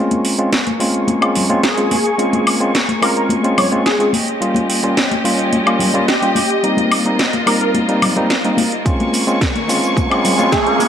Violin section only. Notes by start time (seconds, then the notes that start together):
Already playing: A#3 G#4 C#6
4.13 C#4 G4 D#5
6.63 A#3 F4
8.86 G#4 C#6